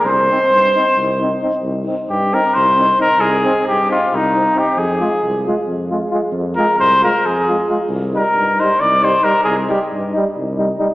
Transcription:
X:1
M:7/8
L:1/8
Q:1/4=134
K:Cm
V:1 name="Flugelhorn"
c6 z | z6 z | z6 z | z6 z |
z6 z | z6 z | z6 z |]
V:2 name="Trumpet"
c6 z | z2 G B c2 B | A2 G F E2 G | A3 z4 |
z B c B A2 z | z B2 c d c B | A G z4 z |]
V:3 name="Euphonium"
z E z E z E E | z E z E z E E | z E z E z E E | z F z F z F F |
z F z F z F F | z E z E z E E | z E z E z E E |]
V:4 name="Trombone" clef=bass
z C z C z C C | z C z C z C C | z C z C z C C | z A, z A, z A, A, |
z A, z A, z A, A, | z G, z G, z G, G, | z G, z G, z G, G, |]
V:5 name="Tuba" clef=bass
C,,2 G,,2 C,,3 | C,,2 G,,2 C,,3 | C,,2 G,,2 C,,3 | F,,2 C,,2 F,,3 |
F,,2 C,,2 F,,3 | C,,2 G,,2 C,,3 | C,,2 G,,2 C,,3 |]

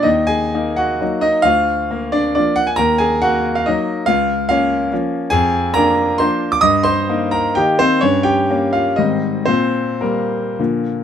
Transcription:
X:1
M:3/4
L:1/16
Q:1/4=133
K:Ebm
V:1 name="Grand piano"
[Ee]2 [Aa]4 [Gg]4 [Ee]2 | [Ff]6 [=D=d]2 [Dd]2 g a | [Bb]2 [Aa]2 [Gg]3 f [Ee]4 | [Ff]4 [Ff]4 z4 |
[K:Gphr] [Aa]4 [Bb]4 [cc']3 d' | [ee']2 [cc']4 [Bb]2 [Gg]2 [Cc]2 | [_D_d]2 [Gg]4 [Ff]2 [Ee]4 | [Cc]4 [B,B]6 z2 |]
V:2 name="Grand piano"
E,,4 [B,E]4 [G,B,E]4 | =D,,4 B,4 [F,B,]4 | E,,4 B,4 [G,B,]4 | D,,4 [B,D]4 [F,B,D]4 |
[K:Gphr] F,,4 [B,D]4 [F,B,D]4 | G,,4 [B,E]4 [E,B,E]4 | G,,4 [B,_D]4 [A,,E,G,C]4 | B,,4 G,4 [B,,D,F,B,]4 |]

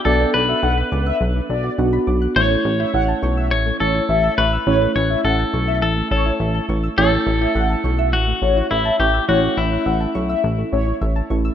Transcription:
X:1
M:4/4
L:1/16
Q:1/4=104
K:Amix
V:1 name="Analog polysynth"
d z2 e f z2 e z2 d2 z4 | c z2 e f z2 e z2 c2 e3 z | c z2 e f z2 e z2 c2 z4 | c z2 e f z2 e z2 c2 e3 z |
c z2 e f z2 e z2 c2 z4 |]
V:2 name="Synth arpeggio sound"
F, B, D F f b d' f' F, B, D F f b d' f' | E, A, C E e a c' e' E, A, C E e a c' e' | E, A, C E e a c' e' E, A, C E e a c' e' | E, A, C E e a c' e' E, A, C E e a c' e' |
E, A, C E e a c' e' E, A, C E e a c' e' |]
V:3 name="Clean electric guitar"
A2 B8 z6 | c8 c2 A4 B2- | B2 c2 A4 A2 A4 z2 | A8 F4 E2 G2 |
F2 E8 z6 |]
V:4 name="Synth keys"
[B,DA]12 [B,DF]4 | [A,CE]16 | [A,CE]16 | [A,CE]16 |
[A,CE]12- [A,CE]2 [A,CE]2 |]
V:5 name="Analog synth bass" clef=bass
B,,,2 B,,,2 B,,,2 C,,2 B,,,2 B,,,2 B,,,2 B,,,2 | A,,,2 A,,,2 A,,,2 B,,,2 A,,,2 A,,,2 A,,,2 A,,,2 | A,,,2 A,,,2 A,,,2 B,,,2 A,,,2 A,,,2 A,,,2 A,,,2 | A,,,2 A,,,2 A,,,2 B,,,2 A,,,2 A,,,2 A,,,2 A,,,2 |
A,,,2 A,,,2 A,,,2 B,,,2 A,,,2 A,,,2 A,,,2 A,,,2 |]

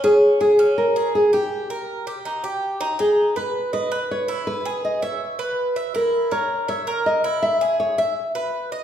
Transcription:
X:1
M:4/4
L:1/8
Q:1/4=162
K:G#m
V:1 name="Nylon-string guitar"
G2 G2 A2 G =G- | =G6 z2 | G2 B2 B2 c2 | B2 d c3 z2 |
A2 c2 c2 d2 | e2 c e3 z2 |]
V:2 name="Cuban tres"
C2 G C2 G2 =G- | =G A2 G D G2 D | D2 B2 d B2 E- | E G2 e2 B2 e |
E2 A2 e A2 E- | E G2 e2 B2 d |]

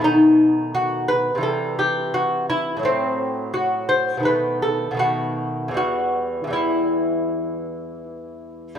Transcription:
X:1
M:4/4
L:1/8
Q:1/4=82
K:Em
V:1 name="Lute"
^D2 F B A G F E | C2 F c B A F2 | F2 E4 z2 |]
V:2 name="Lute" clef=bass
[B,,^D,A,]4 [C,E,G,]4 | [A,,F,A,]4 [B,,^D,A,]2 [B,,D,A,]2 | [E,,E,G,]2 [E,,E,G,]6 |]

